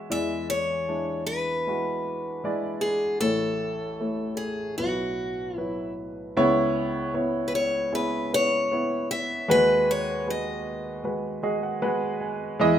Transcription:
Already playing: G#3 F#4 C#5 E5
0.10 E2 E3 G#3 E4 D5 E5
0.50 C#5
0.88 G#3 D4 E4
1.26 B4
1.67 G#3 E4 F#4
2.44 G#3 E4 D5
2.81 G#4
3.21 A1 A2 A3 E4 A4 C#5
4.00 A3 E4 C#5
4.37 G#4
4.78 B1 B2 F#3 E4 F#4 B4
5.57 F#3 E4 B4
6.37 C#2 C#3 B3 E4 C#5
7.14 B3 E4 C#5
7.48 B4
7.55 C#5
7.92 B3 E4 G#4 B4
8.33 B3 E4 B4 C#5
8.71 B3 E4 C#5
9.11 E5
9.48 D#2 D#3 G#3 F#4 B4
9.91 C#5
10.27 G#3 F#4 B4 D#5
11.04 G#3 F#4 B4
11.43 G#3 F#4 G#4 D#5
11.63 F#5
11.82 G#3 F#4 B4 F#5
12.21 G#5
12.59 E2 E3 G#3 E4 D#5

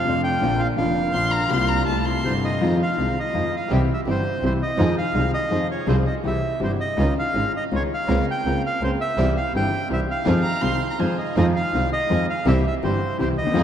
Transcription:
Already playing: F5
0.05 F2 C3 F3 A3 C4 D4 F4
0.09 D4
0.24 G5
0.40 A#1 A#2 D3 F3 A#3 D4 F4
0.44 F4
0.59 F5
0.76 F1 F2 D3 F3 A#3 D4 F4 F5
0.80 F4
1.12 A#1 A#2 D3 F3 A#3 D4 F4 C6
1.32 A#5
1.50 C2 C3 G3 A#3 C4 F4 C6
1.69 A#5
1.85 C2 C3 G3 A3 C4 E4 A5
2.05 C6
2.23 G1 G2 C3 G3 A3 C4 E4 C5
2.45 D#5
2.61 F2 D#3 F3 G#3 C4 D#4 F4
2.82 F5
2.98 C2 C3 D#3 G#3 C4 D#4 F4
3.19 D#5
3.33 F2 D#3 F3 G#3 C4 D#4 F4
3.56 F5
3.70 C2 C3 E3 G3 C4 E4 G4
3.74 E5
3.94 E5
4.06 G1 G2 E3 G3 C4 E4 G4 C5
4.42 C2 C3 E3 G3 C4 E4 G4 C5
4.63 D#5
4.77 F2 D#3 F3 G#3 C4 D#4 F4 G#4
4.98 F5
5.14 C2 C3 D#3 G#3 C4 D#4 F4 G#4
5.34 D#5
5.50 F2 D#3 F3 G#3 C4 D#4 F4 G#4
5.71 C#5
5.87 C2 C3 F3 G#3 C4 F4 G#4 C5
6.07 D#5
6.23 C2 C3 E3 G3 C4 E4 G4 E5
6.60 G1 G2 E3 G3 C4 E4 G4
6.64 C5
6.80 D#5
6.97 C#2 C#3 D#3 G#3 C#4 D#4 F4
7.19 F5
7.33 G#1 G#2 D#3 G#3 C#4 D#4 F4
7.57 D#5
7.72 C#2 C#3 D#3 G#3 C#4 D#4 F4
7.76 C#5
7.94 F5
8.08 C#2 C#3 A#3 C4 C#4 F4 A#4
8.31 G5
8.45 C#2 C#3 A#3 C4 C#4 F4 A#4
8.66 F5
8.81 C#2 C#3 A#3 C4 C#4 F4 A#4 C5
9.01 E5
9.17 C2 C3 E3 G3 C4 E4 G4
9.37 F5
9.54 G1 G2 E3 G3 C4 E4 G4 G5
9.89 C2 C3 E3 G3 C4 E4 G4 E5
10.11 F5
10.25 F2 D#3 F3 G#3 C4 D#4 F4 G#4
10.43 A#5
10.61 C2 C3 D#3 G#3 C4 D#4 F4 G#4 C6
10.90 A#5
10.99 F2 D#3 F3 G#3 C4 D#4 F4 G#4 C5 G#5
11.18 D#5
11.36 F2 D#3 F3 G#3 C4 D#4 F4 G#4 D#5
11.56 F5
11.73 C2 C3 D#3 G#3 C4 D#4 F4 G#4
11.93 D#5
12.10 F2 D#3 F3 G#3 C4 D#4 F4 G#4
12.30 F5
12.46 C2 C3 E3 G3 C4 E4 G4 E5
12.67 E5
12.83 G1 G2 E3 G3 C4 E4 G4 C5
13.18 C2 C3 E3 G3 C4 E4 G4 C5
13.37 D#2 D#5
13.42 D2
13.46 D#2 E2
13.54 F2 D#3 F3 G#3 C4 D#4 F4 G#4

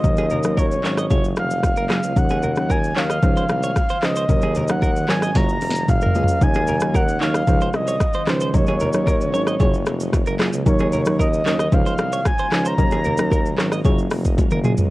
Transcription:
Already playing: D#3 C#4 D#5
0.04 D#2 F#3 A#3 C#4 D#4 F#4 A#4, kick, low conga, shaker
0.17 G#4, low bongo, shaker
0.30 A#4, low conga, shaker
0.43 F#3 C#4 D#4 A#4, cross-stick, shaker
0.57 A#4 C#5, kick, high bongo, shaker
0.71 shaker
0.83 G#1 F#3 C#4 D#4 A#4 C#5, clap, shaker
0.97 D#5, cross-stick, shaker
1.10 F#1 C#3 F#3 G#3 A#3 F4 G#4 C#5, kick, low conga, shaker
1.24 shaker
1.36 F1 F5, cross-stick, low bongo, shaker
1.51 shaker
1.63 F5, kick, cross-stick, high bongo, shaker
1.77 F#1 A#4, shaker
1.90 F#3 A#3 F4 G#4, cross-stick, clap, shaker
2.03 C#2, shaker
2.16 D#2 D#3 F#3 C#4 D#4 F#4 A#4 F#5, kick, low conga, shaker
2.29 G#4, low bongo, shaker
2.43 A#4, low conga, shaker
2.56 F#3 C#4 D#4 A#4, cross-stick, shaker
2.70 A#4 G#5, kick, high bongo, shaker
2.84 shaker
2.96 D#2 F#3 C#4 D#4 A#4 C#5 F5, clap, shaker
3.10 D#5, cross-stick, shaker
3.23 C#2 F3 G#3 C#4 D#4 F4 C5, kick, low conga, shaker
3.37 C5, shaker
3.49 C2 F5, cross-stick, low bongo, shaker
3.63 C#5, shaker
3.76 kick, cross-stick, high bongo, shaker
3.89 C5, shaker
4.02 C#2 F3 C#4 D#4 C5 D#5, cross-stick, clap, shaker
4.16 C5, shaker
4.29 D#2 D#3 F#3 A#3 C#4 D#4 F#4 A#4, kick, low conga, shaker
4.42 G#4, low bongo, shaker
4.55 A#4, low bongo, low conga, shaker
4.68 F#3 C#4 D#4 A#4 F#5, cross-stick, low bongo, shaker
4.82 A#4, kick, high bongo, shaker
4.96 shaker
5.08 G#1 F#3 C#4 D#4 A#4 C#5 G#5, cross-stick, clap, shaker
5.22 D#5, cross-stick, shaker
5.35 F#1 C#3 F#3 G#3 A#3 F4 G#4 C#5 A#5, kick, snare, low conga, shaker
5.49 shaker
5.61 F1, open hi-hat, low bongo, shaker
5.71 snare
5.75 shaker
5.88 F#1 F5, kick, mid tom, high bongo, shaker
6.01 A#4, shaker
6.06 floor tom
6.15 C#2 F#3 A#3 F4 G#4, high bongo, shaker
6.24 floor tom
6.28 shaker
6.41 D#2 D#3 F#3 A#3 C#4 D#4 F#4 A#4 G#5, kick, low conga, shaker
6.54 G#4, high bongo, low bongo, shaker
6.67 A#4, low bongo, low conga, shaker
6.80 F#3 C#4 D#4 A#4, cross-stick, shaker
6.94 A#4 F#5, kick, high bongo, shaker
7.08 shaker
7.21 D#2 F#3 C#4 D#4 A#4 C#5 F5, clap, shaker
7.34 D#5, cross-stick, shaker
7.47 C#2 D#3 F3 G#3 C#4 D#4 F4 C5, kick, low conga, shaker
7.61 C5, shaker
7.73 C2 D#5, cross-stick, low bongo, shaker
7.88 C#5, shaker
8.01 kick, cross-stick, high bongo, shaker
8.14 C5, shaker
8.27 C#2 F3 C#4 D#4 C5, cross-stick, clap, shaker
8.40 C5, shaker
8.53 D#2 D#3 F#3 A#3 C#4 D#4 F#4 A#4 C#5, kick, low conga, shaker
8.66 G#4, high bongo, low bongo, shaker
8.80 A#4, low bongo, low conga, shaker
8.93 F#3 C#4 D#4 A#4, cross-stick, shaker
9.07 A#4, kick, high bongo, shaker
9.21 shaker
9.33 G#1 F#3 C#4 D#4 A#4 C#5, shaker
9.47 D#5, cross-stick, shaker
9.60 F#1 C#3 F#3 G#3 A#3 F4 G#4 C#5, kick, low conga, shaker
9.74 shaker
9.86 F1, cross-stick, low bongo, shaker
10.00 shaker
10.13 kick, cross-stick, high bongo, shaker
10.26 F#1 A#4, shaker
10.39 F#3 A#3 F4 G#4, cross-stick, clap, shaker
10.53 C#2, shaker
10.66 D#2 D#3 F#3 C#4 D#4 F#4 A#4 C#5, kick, low conga, shaker
10.79 G#4, high bongo, low bongo, shaker
10.92 A#4, low bongo, low conga, shaker
11.05 F#3 C#4 D#4 A#4, cross-stick, shaker
11.19 A#4 D#5, kick, high bongo, shaker
11.33 shaker
11.45 D#2 F#3 C#4 D#4 A#4 C#5, clap, shaker
11.59 D#5, cross-stick, shaker
11.72 C#2 F3 G#3 C#4 D#4 F4 C5 F5, kick, low conga, shaker
11.86 C5, shaker
11.98 C2, cross-stick, low bongo, shaker
12.13 C#5, shaker
12.25 G#5, kick, cross-stick, high bongo, shaker
12.38 C5, shaker
12.52 C#2 F3 C#4 D#4 C5, cross-stick, clap, shaker
12.65 C5 A#5, shaker
12.78 D#2 F#3 A#3 C#4 D#4 F#4 A#4, kick, low conga, shaker
12.91 G#4, high bongo, low bongo, shaker
13.05 A#4, low bongo, low conga, shaker
13.18 F#3 C#4 D#4 A#4, cross-stick, shaker
13.32 A#4, kick, high bongo, shaker
13.46 shaker
13.58 G#1 F#3 C#4 D#4 A#4 C#5, cross-stick, clap, shaker
13.72 D#5, cross-stick, shaker
13.85 F#1 C#3 F#3 G#3 A#3 F4 G#4 C#5, kick, low conga, shaker
13.98 shaker
14.11 F1, cross-stick, open hi-hat, low bongo, shaker
14.25 kick, shaker
14.38 kick, high tom, high bongo, shaker
14.51 F#1 A#4, mid tom, shaker
14.64 F#3 A#3 F4 G#4, mid tom, shaker
14.78 C#2, floor tom, shaker

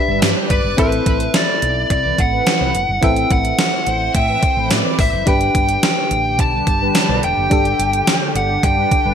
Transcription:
Already playing: D4 G4 B4 E5
0.08 G1 G3 D4 B4
0.22 G2 G4, snare, closed hi-hat, tambourine
0.50 G1 B4 D5, kick, closed hi-hat
0.64 G1
0.77 A1 C4 E4 A4 B4 C5 E5 B5, kick, closed hi-hat
0.92 closed hi-hat
1.06 A1, kick, closed hi-hat
1.20 closed hi-hat
1.34 D5, snare, closed hi-hat, tambourine
1.62 B1, closed hi-hat
1.90 C2 D5, kick, closed hi-hat
2.05 E3 C4 B4
2.18 A1 F#5, kick, closed hi-hat
2.32 E3 C4 B4
2.47 snare, closed hi-hat, tambourine
2.61 C2
2.75 F#1, closed hi-hat
2.89 G1
3.01 A1 C4 E4 A4 B4 E5 G5, kick, closed hi-hat
3.16 closed hi-hat
3.31 A1 F#5, kick, closed hi-hat
3.45 closed hi-hat
3.59 snare, closed hi-hat, tambourine
3.86 A1 C5, closed hi-hat
4.14 A2 E5 G5, kick, closed hi-hat
4.29 E3 C4 B4
4.43 C5, kick, closed hi-hat
4.57 A1 E3 C4 B4
4.71 A2 D5, snare, closed hi-hat, tambourine
4.99 A1 C5 E5, kick, open hi-hat
5.13 F#1
5.26 G1 D3 D4 G4 B4 G5, kick, closed hi-hat
5.41 closed hi-hat
5.55 G1, kick, closed hi-hat
5.69 closed hi-hat
5.83 G5, snare, closed hi-hat, tambourine
6.11 A1, closed hi-hat
6.39 B1 A5, kick, closed hi-hat
6.53 G3 D4 B4
6.67 G1, kick, closed hi-hat
6.81 G3 D4 B4
6.95 snare, closed hi-hat, tambourine
7.09 B1
7.23 E1 G5, closed hi-hat
7.37 F#1
7.50 G1 D4 G4 A4, kick, closed hi-hat
7.65 closed hi-hat
7.79 G1, closed hi-hat
7.93 closed hi-hat
8.07 snare, closed hi-hat, tambourine
8.35 G1 F#5, closed hi-hat
8.63 G2 G5, kick, closed hi-hat
8.77 G3 D4 B4
8.91 kick, closed hi-hat
9.05 G1 G3 D4 B4

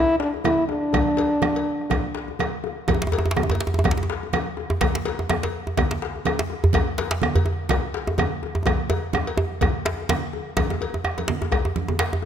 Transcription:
Already playing: E4
0.19 D4, bombo rim, djembe slap
0.34 djembe tone
0.44 E4, bombo rim, cowbell, high conga, djembe bass, low conga
0.58 djembe slap
0.68 D4, djembe tone
0.83 high conga
0.93 bombo rim, bombo low, cowbell, high conga, djembe bass, low conga
1.08 bombo rim
1.17 cowbell, djembe slap, djembe tone
1.31 djembe slap, high conga
1.42 bombo rim, high conga, djembe bass, low conga
1.55 cowbell, djembe tone
1.65 djembe slap
1.80 bombo rim, djembe slap, high conga
1.90 bombo rim, bombo low, cowbell, djembe tone, high conga, djembe bass, low conga
2.04 djembe slap
2.15 bombo rim, djembe slap
2.28 djembe slap, djembe tone
2.39 bombo rim, cowbell, high conga, djembe bass, low conga
2.64 djembe slap, djembe tone
2.88 bombo rim, bombo low, cowbell, djembe tone, high conga, djembe bass, low conga
2.94 djembe tone
3.02 bombo rim, djembe slap
3.07 djembe tone
3.12 cowbell, djembe slap, djembe tone
3.18 djembe tone
3.26 djembe tone
3.31 djembe slap
3.36 bombo rim, djembe tone, high conga, djembe bass, low conga
3.43 djembe tone
3.50 cowbell, djembe tone
3.55 djembe tone
3.60 djembe slap
3.67 djembe tone
3.74 djembe tone
3.79 djembe tone
3.84 bombo rim, bombo low, cowbell, djembe slap, djembe tone, high conga, low conga, djembe bass
3.91 djembe slap
3.98 djembe tone
4.03 djembe tone
4.09 bombo rim, djembe slap
4.23 djembe tone
4.33 bombo rim, cowbell, high conga, low conga, djembe bass
4.47 djembe slap
4.57 djembe tone
4.70 djembe tone, high conga
4.81 bombo rim, bombo low, cowbell, djembe slap, high conga, djembe bass, low conga
4.95 bombo rim, djembe slap
5.05 cowbell, djembe slap, djembe tone
5.19 bombo rim, djembe tone
5.29 bombo rim, djembe slap, high conga, low conga, djembe bass
5.43 cowbell, djembe slap, djembe tone
5.67 djembe tone
5.77 bombo rim, bombo low, cowbell, djembe slap, djembe tone, high conga, djembe bass, low conga
5.91 djembe slap
6.02 bombo rim, djembe slap
6.16 djembe tone
6.25 bombo rim, cowbell, high conga, low conga, djembe bass
6.39 djembe slap
6.50 djembe tone
6.63 high conga, djembe bass
6.73 bombo rim, bombo low, cowbell, high conga, djembe tone, low conga, djembe bass
6.89 bombo rim
6.98 cowbell, djembe slap, djembe tone
7.11 bombo rim, djembe slap
7.22 bombo rim, high conga, low conga, djembe bass
7.35 cowbell, djembe tone, djembe bass
7.46 djembe tone
7.69 bombo rim, bombo low, djembe slap, high conga, low conga
7.71 cowbell, djembe slap, djembe tone, djembe bass
7.94 bombo rim, djembe slap
8.07 djembe tone
8.18 bombo rim, cowbell, djembe tone, high conga, low conga, djembe bass
8.43 djembe tone
8.55 djembe tone, high conga
8.66 bombo rim, bombo low, cowbell, djembe tone, high conga, djembe bass, low conga
8.80 djembe slap
8.90 cowbell, djembe tone, high conga
9.13 bombo rim, djembe slap, high conga, djembe tone, low conga, djembe bass
9.27 bombo rim, cowbell, djembe slap, high conga, djembe tone
9.37 djembe slap, djembe tone
9.52 high conga
9.61 bombo rim, bombo low, cowbell, djembe slap, high conga, djembe tone, low conga, djembe bass
9.75 high conga
9.85 djembe slap
9.99 djembe tone, high conga
10.09 bombo rim, cowbell, djembe slap, high conga, low conga, djembe bass
10.23 bombo rim, djembe slap
10.33 djembe tone, high conga
10.57 bombo rim, bombo low, cowbell, djembe slap, high conga, djembe bass, low conga
10.70 djembe slap, djembe tone, high conga
10.81 cowbell, djembe slap, djembe tone
10.94 djembe tone
11.04 bombo rim, djembe tone
11.18 cowbell, djembe tone, high conga
11.28 djembe slap, low conga
11.42 djembe slap, djembe tone
11.52 bombo rim, bombo low, cowbell, djembe tone, djembe bass
11.65 djembe tone
11.76 high conga, djembe tone
11.88 djembe tone, high conga, low conga
11.99 bombo rim, cowbell, djembe slap
12.13 djembe tone, high conga

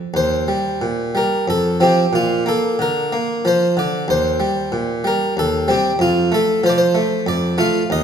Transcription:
0.14 D#2 C5
0.48 G3
0.81 A#2
1.15 G3 A#4
1.48 F2 A4
1.80 F3 C4 G4
2.13 A#2 F4
2.46 A#3 A4
2.79 D3 A#4
3.12 A#3
3.45 F3 C5
3.77 D3 D5
4.08 D#2 C5
4.40 G3
4.72 A#2
5.04 G3 A#4
5.37 D#2 A4
5.68 G3 C4 G4
5.99 F2 F4
6.32 A3 A4
6.64 F3 C5
6.69 D5
6.78 C5
6.95 A3
7.27 F2 D5
7.58 A3 F4 F5
7.90 D#2 D#5

